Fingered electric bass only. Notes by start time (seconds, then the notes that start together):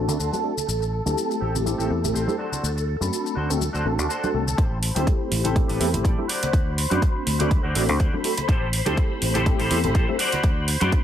0.08 D2
0.19 D2
0.68 A1
1.06 D2
1.42 A1
1.79 A1
1.90 E2
2.03 A1
2.15 A1
2.63 D2
3.01 F#2
3.36 D2
3.74 D2
3.85 A1
3.99 D2
4.34 C2
4.58 A1
4.96 D2
5.31 A1
5.69 A1
5.80 E2
5.94 A1
6.05 A1
6.53 D2
6.91 F#2
7.27 D2
7.64 D2
7.75 A1
7.89 D2
8.00 D2
8.49 A1
8.86 D2
9.22 A1
9.60 A1
9.71 E2
9.84 A1
9.95 A1
10.43 D2
10.81 F#2